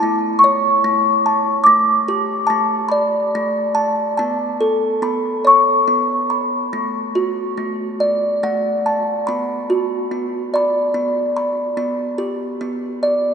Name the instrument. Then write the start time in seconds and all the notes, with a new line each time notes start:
music box
Already playing: E4
0.00 A3 A5
0.39 C#6
0.44 C#5
0.84 A3
1.26 A5
1.64 A3 D6
2.08 G4
2.47 A3 A5
2.89 D5 B5
3.35 A3
3.75 A5
4.17 B3 A5
4.61 A4
5.02 B3 B5
5.45 C#5 C#6
5.88 B3
6.30 B5
6.73 A3
7.15 F#4
7.57 A3
8.00 D5
8.43 A3 F#5
8.86 A5
9.27 B3 B5
9.70 F#4
10.11 B3
10.54 D5 B5
10.94 B3
11.37 B5
11.77 B3
12.18 G4
12.61 B3
13.03 D5